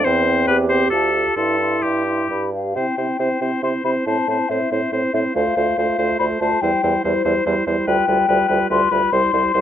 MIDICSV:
0, 0, Header, 1, 6, 480
1, 0, Start_track
1, 0, Key_signature, 0, "major"
1, 0, Tempo, 432588
1, 59, Time_signature, 3, 2, 24, 8
1, 1020, Tempo, 460476
1, 2940, Tempo, 434783
1, 4860, Tempo, 420463
1, 10694, End_track
2, 0, Start_track
2, 0, Title_t, "Flute"
2, 0, Program_c, 0, 73
2, 60, Note_on_c, 0, 79, 43
2, 291, Note_off_c, 0, 79, 0
2, 298, Note_on_c, 0, 79, 42
2, 761, Note_off_c, 0, 79, 0
2, 768, Note_on_c, 0, 79, 47
2, 1013, Note_off_c, 0, 79, 0
2, 1018, Note_on_c, 0, 81, 35
2, 1238, Note_off_c, 0, 81, 0
2, 1244, Note_on_c, 0, 81, 38
2, 1481, Note_off_c, 0, 81, 0
2, 1488, Note_on_c, 0, 84, 30
2, 1729, Note_off_c, 0, 84, 0
2, 1738, Note_on_c, 0, 84, 27
2, 2214, Note_off_c, 0, 84, 0
2, 2222, Note_on_c, 0, 84, 28
2, 2459, Note_off_c, 0, 84, 0
2, 2465, Note_on_c, 0, 83, 28
2, 2701, Note_off_c, 0, 83, 0
2, 2706, Note_on_c, 0, 77, 42
2, 2936, Note_on_c, 0, 79, 43
2, 2952, Note_off_c, 0, 77, 0
2, 3893, Note_off_c, 0, 79, 0
2, 3900, Note_on_c, 0, 84, 49
2, 3966, Note_off_c, 0, 84, 0
2, 4136, Note_on_c, 0, 83, 54
2, 4202, Note_off_c, 0, 83, 0
2, 4377, Note_on_c, 0, 81, 53
2, 4850, Note_on_c, 0, 76, 44
2, 4867, Note_off_c, 0, 81, 0
2, 5344, Note_off_c, 0, 76, 0
2, 5582, Note_on_c, 0, 76, 56
2, 5651, Note_off_c, 0, 76, 0
2, 5823, Note_on_c, 0, 77, 62
2, 6772, Note_off_c, 0, 77, 0
2, 6786, Note_on_c, 0, 83, 74
2, 6855, Note_off_c, 0, 83, 0
2, 7032, Note_on_c, 0, 81, 58
2, 7274, Note_on_c, 0, 79, 67
2, 7291, Note_off_c, 0, 81, 0
2, 7762, Note_off_c, 0, 79, 0
2, 7768, Note_on_c, 0, 72, 57
2, 8231, Note_off_c, 0, 72, 0
2, 8713, Note_on_c, 0, 79, 80
2, 9614, Note_off_c, 0, 79, 0
2, 9662, Note_on_c, 0, 84, 80
2, 9903, Note_on_c, 0, 83, 70
2, 9920, Note_off_c, 0, 84, 0
2, 10141, Note_on_c, 0, 84, 75
2, 10158, Note_off_c, 0, 83, 0
2, 10694, Note_off_c, 0, 84, 0
2, 10694, End_track
3, 0, Start_track
3, 0, Title_t, "Oboe"
3, 0, Program_c, 1, 68
3, 46, Note_on_c, 1, 72, 70
3, 519, Note_off_c, 1, 72, 0
3, 525, Note_on_c, 1, 71, 69
3, 635, Note_off_c, 1, 71, 0
3, 767, Note_on_c, 1, 72, 73
3, 994, Note_off_c, 1, 72, 0
3, 1001, Note_on_c, 1, 69, 62
3, 1478, Note_off_c, 1, 69, 0
3, 1484, Note_on_c, 1, 69, 54
3, 1965, Note_on_c, 1, 67, 42
3, 1981, Note_off_c, 1, 69, 0
3, 2698, Note_off_c, 1, 67, 0
3, 2935, Note_on_c, 1, 72, 36
3, 3174, Note_off_c, 1, 72, 0
3, 3179, Note_on_c, 1, 72, 27
3, 3410, Note_off_c, 1, 72, 0
3, 3416, Note_on_c, 1, 72, 33
3, 3653, Note_off_c, 1, 72, 0
3, 3664, Note_on_c, 1, 72, 36
3, 3897, Note_off_c, 1, 72, 0
3, 3907, Note_on_c, 1, 72, 33
3, 4135, Note_off_c, 1, 72, 0
3, 4141, Note_on_c, 1, 72, 33
3, 4376, Note_off_c, 1, 72, 0
3, 4389, Note_on_c, 1, 72, 34
3, 4621, Note_off_c, 1, 72, 0
3, 4633, Note_on_c, 1, 72, 28
3, 4855, Note_off_c, 1, 72, 0
3, 4862, Note_on_c, 1, 72, 35
3, 5101, Note_off_c, 1, 72, 0
3, 5111, Note_on_c, 1, 72, 38
3, 5339, Note_off_c, 1, 72, 0
3, 5346, Note_on_c, 1, 72, 42
3, 5588, Note_off_c, 1, 72, 0
3, 5597, Note_on_c, 1, 72, 31
3, 5830, Note_off_c, 1, 72, 0
3, 5837, Note_on_c, 1, 72, 37
3, 6069, Note_off_c, 1, 72, 0
3, 6076, Note_on_c, 1, 72, 33
3, 6314, Note_off_c, 1, 72, 0
3, 6321, Note_on_c, 1, 72, 38
3, 6548, Note_off_c, 1, 72, 0
3, 6555, Note_on_c, 1, 72, 47
3, 6792, Note_off_c, 1, 72, 0
3, 6797, Note_on_c, 1, 72, 38
3, 7032, Note_off_c, 1, 72, 0
3, 7047, Note_on_c, 1, 72, 41
3, 7273, Note_off_c, 1, 72, 0
3, 7280, Note_on_c, 1, 72, 49
3, 7516, Note_off_c, 1, 72, 0
3, 7523, Note_on_c, 1, 72, 38
3, 7753, Note_off_c, 1, 72, 0
3, 7760, Note_on_c, 1, 72, 47
3, 7990, Note_off_c, 1, 72, 0
3, 7997, Note_on_c, 1, 72, 54
3, 8231, Note_off_c, 1, 72, 0
3, 8239, Note_on_c, 1, 72, 49
3, 8465, Note_off_c, 1, 72, 0
3, 8472, Note_on_c, 1, 72, 46
3, 8703, Note_off_c, 1, 72, 0
3, 8710, Note_on_c, 1, 71, 51
3, 8939, Note_off_c, 1, 71, 0
3, 8946, Note_on_c, 1, 71, 40
3, 9175, Note_off_c, 1, 71, 0
3, 9182, Note_on_c, 1, 71, 54
3, 9398, Note_off_c, 1, 71, 0
3, 9405, Note_on_c, 1, 71, 55
3, 9647, Note_off_c, 1, 71, 0
3, 9656, Note_on_c, 1, 71, 46
3, 9887, Note_off_c, 1, 71, 0
3, 9894, Note_on_c, 1, 71, 41
3, 10132, Note_off_c, 1, 71, 0
3, 10139, Note_on_c, 1, 72, 51
3, 10373, Note_off_c, 1, 72, 0
3, 10378, Note_on_c, 1, 72, 44
3, 10602, Note_off_c, 1, 72, 0
3, 10609, Note_on_c, 1, 72, 47
3, 10694, Note_off_c, 1, 72, 0
3, 10694, End_track
4, 0, Start_track
4, 0, Title_t, "Clarinet"
4, 0, Program_c, 2, 71
4, 62, Note_on_c, 2, 64, 55
4, 526, Note_off_c, 2, 64, 0
4, 533, Note_on_c, 2, 67, 62
4, 1478, Note_off_c, 2, 67, 0
4, 1495, Note_on_c, 2, 64, 46
4, 2681, Note_off_c, 2, 64, 0
4, 2941, Note_on_c, 2, 64, 36
4, 3177, Note_off_c, 2, 64, 0
4, 3182, Note_on_c, 2, 64, 34
4, 3413, Note_off_c, 2, 64, 0
4, 3420, Note_on_c, 2, 64, 31
4, 3647, Note_off_c, 2, 64, 0
4, 3654, Note_on_c, 2, 64, 32
4, 3888, Note_off_c, 2, 64, 0
4, 3894, Note_on_c, 2, 64, 36
4, 4132, Note_off_c, 2, 64, 0
4, 4137, Note_on_c, 2, 64, 35
4, 4374, Note_off_c, 2, 64, 0
4, 4380, Note_on_c, 2, 64, 36
4, 4610, Note_off_c, 2, 64, 0
4, 4617, Note_on_c, 2, 64, 36
4, 4848, Note_off_c, 2, 64, 0
4, 4855, Note_on_c, 2, 64, 35
4, 5097, Note_off_c, 2, 64, 0
4, 5108, Note_on_c, 2, 64, 34
4, 5336, Note_off_c, 2, 64, 0
4, 5343, Note_on_c, 2, 64, 38
4, 5578, Note_off_c, 2, 64, 0
4, 5585, Note_on_c, 2, 64, 42
4, 5829, Note_off_c, 2, 64, 0
4, 5834, Note_on_c, 2, 65, 43
4, 6074, Note_off_c, 2, 65, 0
4, 6080, Note_on_c, 2, 65, 43
4, 6316, Note_off_c, 2, 65, 0
4, 6322, Note_on_c, 2, 65, 43
4, 6556, Note_off_c, 2, 65, 0
4, 6562, Note_on_c, 2, 65, 43
4, 6792, Note_off_c, 2, 65, 0
4, 6799, Note_on_c, 2, 65, 40
4, 7034, Note_off_c, 2, 65, 0
4, 7040, Note_on_c, 2, 65, 43
4, 7276, Note_off_c, 2, 65, 0
4, 7284, Note_on_c, 2, 64, 46
4, 7521, Note_off_c, 2, 64, 0
4, 7533, Note_on_c, 2, 64, 47
4, 7763, Note_off_c, 2, 64, 0
4, 7769, Note_on_c, 2, 64, 50
4, 8001, Note_off_c, 2, 64, 0
4, 8006, Note_on_c, 2, 64, 47
4, 8236, Note_off_c, 2, 64, 0
4, 8249, Note_on_c, 2, 64, 49
4, 8477, Note_off_c, 2, 64, 0
4, 8485, Note_on_c, 2, 64, 50
4, 8713, Note_off_c, 2, 64, 0
4, 8721, Note_on_c, 2, 65, 54
4, 8949, Note_off_c, 2, 65, 0
4, 8954, Note_on_c, 2, 65, 55
4, 9183, Note_off_c, 2, 65, 0
4, 9188, Note_on_c, 2, 65, 46
4, 9416, Note_off_c, 2, 65, 0
4, 9423, Note_on_c, 2, 65, 49
4, 9656, Note_off_c, 2, 65, 0
4, 9662, Note_on_c, 2, 65, 52
4, 9891, Note_off_c, 2, 65, 0
4, 9898, Note_on_c, 2, 65, 52
4, 10132, Note_off_c, 2, 65, 0
4, 10138, Note_on_c, 2, 64, 53
4, 10369, Note_off_c, 2, 64, 0
4, 10376, Note_on_c, 2, 64, 52
4, 10614, Note_off_c, 2, 64, 0
4, 10622, Note_on_c, 2, 64, 46
4, 10694, Note_off_c, 2, 64, 0
4, 10694, End_track
5, 0, Start_track
5, 0, Title_t, "French horn"
5, 0, Program_c, 3, 60
5, 47, Note_on_c, 3, 60, 47
5, 275, Note_off_c, 3, 60, 0
5, 282, Note_on_c, 3, 60, 47
5, 756, Note_off_c, 3, 60, 0
5, 763, Note_on_c, 3, 60, 51
5, 1007, Note_off_c, 3, 60, 0
5, 1014, Note_on_c, 3, 65, 44
5, 1236, Note_off_c, 3, 65, 0
5, 1243, Note_on_c, 3, 65, 34
5, 1484, Note_off_c, 3, 65, 0
5, 1489, Note_on_c, 3, 64, 34
5, 1720, Note_off_c, 3, 64, 0
5, 1726, Note_on_c, 3, 64, 35
5, 2208, Note_off_c, 3, 64, 0
5, 2213, Note_on_c, 3, 64, 27
5, 2455, Note_off_c, 3, 64, 0
5, 2462, Note_on_c, 3, 67, 27
5, 2692, Note_off_c, 3, 67, 0
5, 2698, Note_on_c, 3, 67, 28
5, 2932, Note_off_c, 3, 67, 0
5, 2936, Note_on_c, 3, 60, 35
5, 3171, Note_off_c, 3, 60, 0
5, 3177, Note_on_c, 3, 60, 32
5, 3415, Note_off_c, 3, 60, 0
5, 3420, Note_on_c, 3, 60, 34
5, 3649, Note_off_c, 3, 60, 0
5, 3656, Note_on_c, 3, 60, 33
5, 3890, Note_off_c, 3, 60, 0
5, 3897, Note_on_c, 3, 60, 33
5, 4127, Note_off_c, 3, 60, 0
5, 4134, Note_on_c, 3, 60, 34
5, 4372, Note_off_c, 3, 60, 0
5, 4382, Note_on_c, 3, 60, 35
5, 4612, Note_off_c, 3, 60, 0
5, 4618, Note_on_c, 3, 60, 34
5, 4842, Note_off_c, 3, 60, 0
5, 4849, Note_on_c, 3, 60, 37
5, 5084, Note_off_c, 3, 60, 0
5, 5091, Note_on_c, 3, 60, 36
5, 5334, Note_off_c, 3, 60, 0
5, 5340, Note_on_c, 3, 60, 41
5, 5577, Note_off_c, 3, 60, 0
5, 5584, Note_on_c, 3, 60, 37
5, 5819, Note_off_c, 3, 60, 0
5, 5826, Note_on_c, 3, 57, 43
5, 6069, Note_off_c, 3, 57, 0
5, 6075, Note_on_c, 3, 57, 43
5, 6313, Note_off_c, 3, 57, 0
5, 6318, Note_on_c, 3, 57, 43
5, 6549, Note_off_c, 3, 57, 0
5, 6556, Note_on_c, 3, 57, 38
5, 6788, Note_off_c, 3, 57, 0
5, 6795, Note_on_c, 3, 57, 49
5, 7031, Note_off_c, 3, 57, 0
5, 7040, Note_on_c, 3, 57, 44
5, 7269, Note_off_c, 3, 57, 0
5, 7276, Note_on_c, 3, 55, 45
5, 7507, Note_off_c, 3, 55, 0
5, 7514, Note_on_c, 3, 55, 49
5, 7747, Note_off_c, 3, 55, 0
5, 7754, Note_on_c, 3, 55, 47
5, 7987, Note_off_c, 3, 55, 0
5, 7994, Note_on_c, 3, 55, 48
5, 8226, Note_off_c, 3, 55, 0
5, 8233, Note_on_c, 3, 55, 52
5, 8468, Note_off_c, 3, 55, 0
5, 8474, Note_on_c, 3, 55, 43
5, 8703, Note_off_c, 3, 55, 0
5, 8710, Note_on_c, 3, 55, 51
5, 8936, Note_off_c, 3, 55, 0
5, 8943, Note_on_c, 3, 55, 53
5, 9170, Note_off_c, 3, 55, 0
5, 9177, Note_on_c, 3, 55, 56
5, 9407, Note_off_c, 3, 55, 0
5, 9414, Note_on_c, 3, 55, 54
5, 9647, Note_off_c, 3, 55, 0
5, 9654, Note_on_c, 3, 55, 58
5, 9893, Note_off_c, 3, 55, 0
5, 9899, Note_on_c, 3, 55, 43
5, 10130, Note_off_c, 3, 55, 0
5, 10137, Note_on_c, 3, 55, 55
5, 10365, Note_off_c, 3, 55, 0
5, 10372, Note_on_c, 3, 55, 49
5, 10611, Note_off_c, 3, 55, 0
5, 10617, Note_on_c, 3, 55, 58
5, 10694, Note_off_c, 3, 55, 0
5, 10694, End_track
6, 0, Start_track
6, 0, Title_t, "Bassoon"
6, 0, Program_c, 4, 70
6, 62, Note_on_c, 4, 40, 60
6, 477, Note_off_c, 4, 40, 0
6, 526, Note_on_c, 4, 40, 61
6, 959, Note_off_c, 4, 40, 0
6, 1016, Note_on_c, 4, 38, 51
6, 1364, Note_off_c, 4, 38, 0
6, 1491, Note_on_c, 4, 43, 46
6, 1921, Note_off_c, 4, 43, 0
6, 1976, Note_on_c, 4, 43, 38
6, 2406, Note_off_c, 4, 43, 0
6, 2460, Note_on_c, 4, 43, 36
6, 2883, Note_off_c, 4, 43, 0
6, 2935, Note_on_c, 4, 48, 42
6, 3044, Note_off_c, 4, 48, 0
6, 3174, Note_on_c, 4, 48, 37
6, 3284, Note_off_c, 4, 48, 0
6, 3416, Note_on_c, 4, 48, 39
6, 3525, Note_off_c, 4, 48, 0
6, 3656, Note_on_c, 4, 48, 36
6, 3765, Note_off_c, 4, 48, 0
6, 3894, Note_on_c, 4, 48, 38
6, 4003, Note_off_c, 4, 48, 0
6, 4134, Note_on_c, 4, 48, 34
6, 4243, Note_off_c, 4, 48, 0
6, 4378, Note_on_c, 4, 45, 44
6, 4487, Note_off_c, 4, 45, 0
6, 4616, Note_on_c, 4, 45, 39
6, 4725, Note_off_c, 4, 45, 0
6, 4861, Note_on_c, 4, 45, 40
6, 4971, Note_off_c, 4, 45, 0
6, 5106, Note_on_c, 4, 45, 41
6, 5216, Note_off_c, 4, 45, 0
6, 5341, Note_on_c, 4, 45, 38
6, 5453, Note_off_c, 4, 45, 0
6, 5584, Note_on_c, 4, 45, 43
6, 5696, Note_off_c, 4, 45, 0
6, 5839, Note_on_c, 4, 38, 52
6, 5948, Note_off_c, 4, 38, 0
6, 6075, Note_on_c, 4, 38, 45
6, 6184, Note_off_c, 4, 38, 0
6, 6319, Note_on_c, 4, 38, 49
6, 6427, Note_off_c, 4, 38, 0
6, 6557, Note_on_c, 4, 38, 42
6, 6665, Note_off_c, 4, 38, 0
6, 6800, Note_on_c, 4, 38, 43
6, 6908, Note_off_c, 4, 38, 0
6, 7042, Note_on_c, 4, 38, 49
6, 7150, Note_off_c, 4, 38, 0
6, 7282, Note_on_c, 4, 40, 51
6, 7391, Note_off_c, 4, 40, 0
6, 7527, Note_on_c, 4, 40, 55
6, 7635, Note_off_c, 4, 40, 0
6, 7767, Note_on_c, 4, 40, 51
6, 7874, Note_off_c, 4, 40, 0
6, 8000, Note_on_c, 4, 40, 50
6, 8107, Note_off_c, 4, 40, 0
6, 8237, Note_on_c, 4, 40, 55
6, 8344, Note_off_c, 4, 40, 0
6, 8472, Note_on_c, 4, 40, 49
6, 8580, Note_off_c, 4, 40, 0
6, 8712, Note_on_c, 4, 38, 63
6, 8819, Note_off_c, 4, 38, 0
6, 8948, Note_on_c, 4, 38, 54
6, 9055, Note_off_c, 4, 38, 0
6, 9187, Note_on_c, 4, 38, 58
6, 9293, Note_off_c, 4, 38, 0
6, 9425, Note_on_c, 4, 38, 56
6, 9531, Note_off_c, 4, 38, 0
6, 9664, Note_on_c, 4, 38, 60
6, 9771, Note_off_c, 4, 38, 0
6, 9902, Note_on_c, 4, 38, 50
6, 10009, Note_off_c, 4, 38, 0
6, 10138, Note_on_c, 4, 36, 61
6, 10246, Note_off_c, 4, 36, 0
6, 10378, Note_on_c, 4, 36, 54
6, 10487, Note_off_c, 4, 36, 0
6, 10623, Note_on_c, 4, 36, 56
6, 10694, Note_off_c, 4, 36, 0
6, 10694, End_track
0, 0, End_of_file